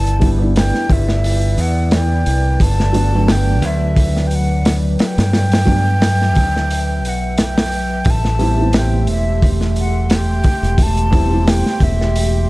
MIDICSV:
0, 0, Header, 1, 6, 480
1, 0, Start_track
1, 0, Tempo, 681818
1, 1832, Time_signature, 4, 2, 24, 8
1, 8798, End_track
2, 0, Start_track
2, 0, Title_t, "Flute"
2, 0, Program_c, 0, 73
2, 0, Note_on_c, 0, 81, 110
2, 215, Note_off_c, 0, 81, 0
2, 404, Note_on_c, 0, 79, 100
2, 651, Note_on_c, 0, 76, 97
2, 661, Note_off_c, 0, 79, 0
2, 1136, Note_on_c, 0, 78, 87
2, 1147, Note_off_c, 0, 76, 0
2, 1364, Note_off_c, 0, 78, 0
2, 1373, Note_on_c, 0, 79, 97
2, 1851, Note_on_c, 0, 81, 107
2, 1861, Note_off_c, 0, 79, 0
2, 2333, Note_on_c, 0, 79, 102
2, 2344, Note_off_c, 0, 81, 0
2, 2575, Note_on_c, 0, 76, 102
2, 2586, Note_off_c, 0, 79, 0
2, 3005, Note_on_c, 0, 79, 74
2, 3016, Note_off_c, 0, 76, 0
2, 3063, Note_on_c, 0, 78, 89
2, 3074, Note_off_c, 0, 79, 0
2, 3344, Note_off_c, 0, 78, 0
2, 3556, Note_on_c, 0, 79, 113
2, 4989, Note_on_c, 0, 78, 90
2, 5000, Note_off_c, 0, 79, 0
2, 5214, Note_on_c, 0, 79, 105
2, 5225, Note_off_c, 0, 78, 0
2, 5705, Note_on_c, 0, 81, 109
2, 5715, Note_off_c, 0, 79, 0
2, 6168, Note_off_c, 0, 81, 0
2, 6176, Note_on_c, 0, 79, 96
2, 6388, Note_off_c, 0, 79, 0
2, 6412, Note_on_c, 0, 76, 97
2, 6678, Note_off_c, 0, 76, 0
2, 6899, Note_on_c, 0, 78, 91
2, 7145, Note_on_c, 0, 79, 108
2, 7156, Note_off_c, 0, 78, 0
2, 7623, Note_on_c, 0, 81, 124
2, 7634, Note_off_c, 0, 79, 0
2, 8094, Note_on_c, 0, 79, 104
2, 8104, Note_off_c, 0, 81, 0
2, 8331, Note_on_c, 0, 76, 107
2, 8341, Note_off_c, 0, 79, 0
2, 8798, Note_off_c, 0, 76, 0
2, 8798, End_track
3, 0, Start_track
3, 0, Title_t, "Analog synth pad"
3, 0, Program_c, 1, 89
3, 0, Note_on_c, 1, 64, 75
3, 0, Note_on_c, 1, 71, 79
3, 0, Note_on_c, 1, 74, 89
3, 1802, Note_off_c, 1, 64, 0
3, 1830, Note_on_c, 1, 54, 81
3, 3724, Note_off_c, 1, 74, 0
3, 3758, Note_on_c, 1, 76, 91
3, 5640, Note_off_c, 1, 71, 0
3, 5643, Note_off_c, 1, 54, 0
3, 5670, Note_on_c, 1, 67, 79
3, 5672, Note_on_c, 1, 57, 84
3, 5673, Note_on_c, 1, 84, 76
3, 7567, Note_off_c, 1, 76, 0
3, 7588, Note_on_c, 1, 79, 92
3, 8798, Note_off_c, 1, 57, 0
3, 8798, Note_off_c, 1, 67, 0
3, 8798, Note_off_c, 1, 79, 0
3, 8798, Note_off_c, 1, 84, 0
3, 8798, End_track
4, 0, Start_track
4, 0, Title_t, "Felt piano"
4, 0, Program_c, 2, 0
4, 0, Note_on_c, 2, 59, 77
4, 0, Note_on_c, 2, 62, 81
4, 0, Note_on_c, 2, 64, 94
4, 121, Note_off_c, 2, 59, 0
4, 124, Note_off_c, 2, 62, 0
4, 128, Note_off_c, 2, 64, 0
4, 137, Note_on_c, 2, 55, 91
4, 143, Note_on_c, 2, 59, 85
4, 147, Note_on_c, 2, 62, 84
4, 150, Note_on_c, 2, 64, 95
4, 247, Note_off_c, 2, 55, 0
4, 250, Note_off_c, 2, 59, 0
4, 252, Note_off_c, 2, 62, 0
4, 253, Note_off_c, 2, 64, 0
4, 269, Note_on_c, 2, 55, 82
4, 274, Note_on_c, 2, 59, 84
4, 285, Note_on_c, 2, 62, 74
4, 293, Note_on_c, 2, 64, 91
4, 1810, Note_off_c, 2, 55, 0
4, 1813, Note_off_c, 2, 59, 0
4, 1818, Note_off_c, 2, 62, 0
4, 1822, Note_off_c, 2, 64, 0
4, 2061, Note_on_c, 2, 54, 95
4, 2067, Note_on_c, 2, 57, 85
4, 2067, Note_on_c, 2, 59, 88
4, 2075, Note_on_c, 2, 62, 109
4, 2169, Note_off_c, 2, 54, 0
4, 2172, Note_off_c, 2, 57, 0
4, 2172, Note_off_c, 2, 59, 0
4, 2176, Note_off_c, 2, 62, 0
4, 2202, Note_on_c, 2, 54, 90
4, 2208, Note_on_c, 2, 57, 77
4, 2219, Note_on_c, 2, 59, 77
4, 2225, Note_on_c, 2, 62, 94
4, 3964, Note_off_c, 2, 54, 0
4, 3967, Note_off_c, 2, 57, 0
4, 3973, Note_off_c, 2, 59, 0
4, 3975, Note_off_c, 2, 62, 0
4, 3980, Note_on_c, 2, 54, 92
4, 3986, Note_on_c, 2, 57, 88
4, 3988, Note_on_c, 2, 59, 82
4, 3994, Note_on_c, 2, 62, 104
4, 4088, Note_off_c, 2, 54, 0
4, 4091, Note_off_c, 2, 57, 0
4, 4092, Note_off_c, 2, 59, 0
4, 4095, Note_off_c, 2, 62, 0
4, 5906, Note_on_c, 2, 55, 95
4, 5906, Note_on_c, 2, 59, 83
4, 5910, Note_on_c, 2, 60, 86
4, 5918, Note_on_c, 2, 64, 98
4, 6011, Note_off_c, 2, 55, 0
4, 6011, Note_off_c, 2, 59, 0
4, 6013, Note_off_c, 2, 60, 0
4, 6017, Note_off_c, 2, 64, 0
4, 6033, Note_on_c, 2, 55, 81
4, 6040, Note_on_c, 2, 59, 77
4, 6048, Note_on_c, 2, 60, 79
4, 6053, Note_on_c, 2, 64, 91
4, 7800, Note_off_c, 2, 55, 0
4, 7803, Note_off_c, 2, 59, 0
4, 7807, Note_off_c, 2, 60, 0
4, 7810, Note_off_c, 2, 64, 0
4, 7819, Note_on_c, 2, 55, 91
4, 7822, Note_on_c, 2, 59, 83
4, 7824, Note_on_c, 2, 60, 88
4, 7828, Note_on_c, 2, 64, 105
4, 7928, Note_off_c, 2, 55, 0
4, 7929, Note_off_c, 2, 59, 0
4, 7930, Note_off_c, 2, 60, 0
4, 7932, Note_off_c, 2, 64, 0
4, 7943, Note_on_c, 2, 55, 84
4, 7951, Note_on_c, 2, 59, 74
4, 7958, Note_on_c, 2, 60, 82
4, 7967, Note_on_c, 2, 64, 96
4, 8798, Note_off_c, 2, 55, 0
4, 8798, Note_off_c, 2, 59, 0
4, 8798, Note_off_c, 2, 60, 0
4, 8798, Note_off_c, 2, 64, 0
4, 8798, End_track
5, 0, Start_track
5, 0, Title_t, "Fingered electric bass"
5, 0, Program_c, 3, 33
5, 0, Note_on_c, 3, 31, 88
5, 499, Note_off_c, 3, 31, 0
5, 632, Note_on_c, 3, 31, 106
5, 1092, Note_off_c, 3, 31, 0
5, 1110, Note_on_c, 3, 40, 95
5, 1570, Note_off_c, 3, 40, 0
5, 1595, Note_on_c, 3, 36, 81
5, 1808, Note_off_c, 3, 36, 0
5, 1832, Note_on_c, 3, 31, 98
5, 2549, Note_off_c, 3, 31, 0
5, 2549, Note_on_c, 3, 38, 97
5, 3490, Note_off_c, 3, 38, 0
5, 3646, Note_on_c, 3, 43, 85
5, 4481, Note_off_c, 3, 43, 0
5, 4481, Note_on_c, 3, 38, 97
5, 4955, Note_off_c, 3, 38, 0
5, 4955, Note_on_c, 3, 35, 93
5, 5653, Note_off_c, 3, 35, 0
5, 5670, Note_on_c, 3, 33, 100
5, 6391, Note_off_c, 3, 33, 0
5, 6391, Note_on_c, 3, 28, 97
5, 7331, Note_off_c, 3, 28, 0
5, 7483, Note_on_c, 3, 28, 94
5, 8179, Note_off_c, 3, 28, 0
5, 8310, Note_on_c, 3, 28, 104
5, 8771, Note_off_c, 3, 28, 0
5, 8798, End_track
6, 0, Start_track
6, 0, Title_t, "Drums"
6, 47, Note_on_c, 9, 42, 43
6, 118, Note_off_c, 9, 42, 0
6, 150, Note_on_c, 9, 46, 59
6, 154, Note_on_c, 9, 36, 94
6, 221, Note_off_c, 9, 46, 0
6, 225, Note_off_c, 9, 36, 0
6, 393, Note_on_c, 9, 46, 90
6, 404, Note_on_c, 9, 38, 112
6, 464, Note_off_c, 9, 46, 0
6, 474, Note_off_c, 9, 38, 0
6, 523, Note_on_c, 9, 38, 37
6, 593, Note_off_c, 9, 38, 0
6, 630, Note_on_c, 9, 36, 99
6, 635, Note_on_c, 9, 46, 65
6, 701, Note_off_c, 9, 36, 0
6, 706, Note_off_c, 9, 46, 0
6, 764, Note_on_c, 9, 38, 41
6, 835, Note_off_c, 9, 38, 0
6, 874, Note_on_c, 9, 46, 79
6, 944, Note_off_c, 9, 46, 0
6, 1111, Note_on_c, 9, 46, 66
6, 1182, Note_off_c, 9, 46, 0
6, 1346, Note_on_c, 9, 46, 79
6, 1352, Note_on_c, 9, 38, 104
6, 1416, Note_off_c, 9, 46, 0
6, 1422, Note_off_c, 9, 38, 0
6, 1592, Note_on_c, 9, 46, 67
6, 1662, Note_off_c, 9, 46, 0
6, 1831, Note_on_c, 9, 36, 99
6, 1834, Note_on_c, 9, 46, 91
6, 1901, Note_off_c, 9, 36, 0
6, 1904, Note_off_c, 9, 46, 0
6, 1970, Note_on_c, 9, 38, 44
6, 2040, Note_off_c, 9, 38, 0
6, 2071, Note_on_c, 9, 46, 69
6, 2141, Note_off_c, 9, 46, 0
6, 2312, Note_on_c, 9, 38, 121
6, 2312, Note_on_c, 9, 46, 91
6, 2382, Note_off_c, 9, 38, 0
6, 2383, Note_off_c, 9, 46, 0
6, 2551, Note_on_c, 9, 46, 63
6, 2622, Note_off_c, 9, 46, 0
6, 2791, Note_on_c, 9, 36, 112
6, 2794, Note_on_c, 9, 46, 87
6, 2862, Note_off_c, 9, 36, 0
6, 2865, Note_off_c, 9, 46, 0
6, 2933, Note_on_c, 9, 38, 37
6, 3003, Note_off_c, 9, 38, 0
6, 3033, Note_on_c, 9, 46, 66
6, 3104, Note_off_c, 9, 46, 0
6, 3275, Note_on_c, 9, 46, 84
6, 3281, Note_on_c, 9, 38, 97
6, 3346, Note_off_c, 9, 46, 0
6, 3351, Note_off_c, 9, 38, 0
6, 3514, Note_on_c, 9, 46, 78
6, 3522, Note_on_c, 9, 38, 102
6, 3584, Note_off_c, 9, 46, 0
6, 3593, Note_off_c, 9, 38, 0
6, 3648, Note_on_c, 9, 46, 68
6, 3652, Note_on_c, 9, 38, 93
6, 3718, Note_off_c, 9, 46, 0
6, 3723, Note_off_c, 9, 38, 0
6, 3755, Note_on_c, 9, 38, 95
6, 3757, Note_on_c, 9, 46, 78
6, 3825, Note_off_c, 9, 38, 0
6, 3827, Note_off_c, 9, 46, 0
6, 3883, Note_on_c, 9, 46, 82
6, 3897, Note_on_c, 9, 38, 107
6, 3954, Note_off_c, 9, 46, 0
6, 3967, Note_off_c, 9, 38, 0
6, 3991, Note_on_c, 9, 36, 88
6, 3995, Note_on_c, 9, 46, 60
6, 4061, Note_off_c, 9, 36, 0
6, 4066, Note_off_c, 9, 46, 0
6, 4236, Note_on_c, 9, 46, 87
6, 4238, Note_on_c, 9, 38, 106
6, 4306, Note_off_c, 9, 46, 0
6, 4308, Note_off_c, 9, 38, 0
6, 4376, Note_on_c, 9, 38, 38
6, 4446, Note_off_c, 9, 38, 0
6, 4472, Note_on_c, 9, 46, 71
6, 4481, Note_on_c, 9, 36, 83
6, 4543, Note_off_c, 9, 46, 0
6, 4551, Note_off_c, 9, 36, 0
6, 4621, Note_on_c, 9, 38, 37
6, 4692, Note_off_c, 9, 38, 0
6, 4721, Note_on_c, 9, 46, 81
6, 4791, Note_off_c, 9, 46, 0
6, 4962, Note_on_c, 9, 46, 63
6, 5033, Note_off_c, 9, 46, 0
6, 5193, Note_on_c, 9, 46, 81
6, 5199, Note_on_c, 9, 38, 96
6, 5263, Note_off_c, 9, 46, 0
6, 5269, Note_off_c, 9, 38, 0
6, 5334, Note_on_c, 9, 38, 109
6, 5335, Note_on_c, 9, 46, 82
6, 5404, Note_off_c, 9, 38, 0
6, 5405, Note_off_c, 9, 46, 0
6, 5432, Note_on_c, 9, 46, 65
6, 5503, Note_off_c, 9, 46, 0
6, 5664, Note_on_c, 9, 46, 83
6, 5673, Note_on_c, 9, 36, 113
6, 5735, Note_off_c, 9, 46, 0
6, 5743, Note_off_c, 9, 36, 0
6, 5806, Note_on_c, 9, 38, 41
6, 5876, Note_off_c, 9, 38, 0
6, 5909, Note_on_c, 9, 46, 64
6, 5980, Note_off_c, 9, 46, 0
6, 6145, Note_on_c, 9, 46, 91
6, 6155, Note_on_c, 9, 38, 111
6, 6216, Note_off_c, 9, 46, 0
6, 6226, Note_off_c, 9, 38, 0
6, 6387, Note_on_c, 9, 46, 62
6, 6457, Note_off_c, 9, 46, 0
6, 6634, Note_on_c, 9, 36, 105
6, 6636, Note_on_c, 9, 46, 77
6, 6705, Note_off_c, 9, 36, 0
6, 6706, Note_off_c, 9, 46, 0
6, 6765, Note_on_c, 9, 38, 38
6, 6836, Note_off_c, 9, 38, 0
6, 6871, Note_on_c, 9, 46, 60
6, 6941, Note_off_c, 9, 46, 0
6, 7109, Note_on_c, 9, 46, 86
6, 7117, Note_on_c, 9, 38, 98
6, 7179, Note_off_c, 9, 46, 0
6, 7187, Note_off_c, 9, 38, 0
6, 7347, Note_on_c, 9, 46, 65
6, 7353, Note_on_c, 9, 36, 103
6, 7418, Note_off_c, 9, 46, 0
6, 7424, Note_off_c, 9, 36, 0
6, 7492, Note_on_c, 9, 42, 48
6, 7563, Note_off_c, 9, 42, 0
6, 7589, Note_on_c, 9, 36, 114
6, 7590, Note_on_c, 9, 46, 93
6, 7659, Note_off_c, 9, 36, 0
6, 7660, Note_off_c, 9, 46, 0
6, 7723, Note_on_c, 9, 42, 44
6, 7794, Note_off_c, 9, 42, 0
6, 7832, Note_on_c, 9, 46, 62
6, 7833, Note_on_c, 9, 36, 98
6, 7903, Note_off_c, 9, 46, 0
6, 7904, Note_off_c, 9, 36, 0
6, 8078, Note_on_c, 9, 46, 101
6, 8079, Note_on_c, 9, 38, 127
6, 8149, Note_off_c, 9, 46, 0
6, 8150, Note_off_c, 9, 38, 0
6, 8210, Note_on_c, 9, 38, 45
6, 8281, Note_off_c, 9, 38, 0
6, 8310, Note_on_c, 9, 36, 85
6, 8311, Note_on_c, 9, 46, 66
6, 8380, Note_off_c, 9, 36, 0
6, 8382, Note_off_c, 9, 46, 0
6, 8457, Note_on_c, 9, 38, 39
6, 8527, Note_off_c, 9, 38, 0
6, 8558, Note_on_c, 9, 46, 89
6, 8628, Note_off_c, 9, 46, 0
6, 8798, End_track
0, 0, End_of_file